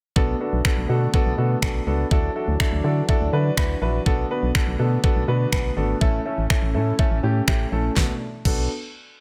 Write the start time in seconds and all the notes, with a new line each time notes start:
0.16 B1 D3 A3 B3 D4 F#4 A4, kick
0.40 B3 D4 F#4 A4
0.53 B1
0.65 B3 D4 F#4 A4, finger snap, kick
0.77 B1
0.89 B2 B3 D4 F#4 A4
1.13 B3 D4 F#4 A4, kick
1.26 B1
1.38 B2 B3 D4 F#4 A4
1.62 B1 B3 D4 F#4 A4, finger snap, kick
1.87 C#2 B3 D4 F#4 A4
2.11 D2 E3 F#3 D4 E4 F#4 A4, kick
2.35 D4 E4 F#4 A4
2.48 D2
2.60 D4 E4 F#4 A4, finger snap, kick
2.72 D2
2.84 D3 D4 E4 F#4 A4
3.08 D4 E4 F#4 A4, kick
3.21 D2
3.33 D3 D4 E4 F#4 B4
3.57 D2 D4 E4 F#4 B4, finger snap, kick
3.81 A#1 D4 E4 F#4 B4
4.06 B1 D3 A3 B3 D4 F#4 A4, kick
4.30 B3 D4 F#4 B4
4.43 B1
4.55 B3 D4 F#4 A4, finger snap, kick
4.67 B1
4.79 B2 B3 D4 F#4 A4
5.03 B3 D4 F#4 A4, kick
5.16 B1
5.28 B2 B3 D4 F#4 B4
5.52 B1 B3 D4 F#4 B4, finger snap, kick
5.77 G#1 B3 D4 F#4 A4
6.01 A1 E3 A3 C#4 E4 A4, kick
6.25 A3 C#4 E4 A4
6.38 A1
6.50 A3 C#4 E4 A4, finger snap, kick
6.62 A1
6.74 A2 A3 C#4 E4 A4
6.99 A3 C#4 E4 A4, kick
7.11 A1
7.23 A2 A3 C#4 E4 G4
7.47 A1 A3 C#4 E4 G4, finger snap, kick
7.72 A#1 A3 C#4 E4 A4
7.96 B1 B2 A3 B3 D4 F#4 A4, kick, snare
8.45 B1 B3 D4 F#4 A4, kick, crash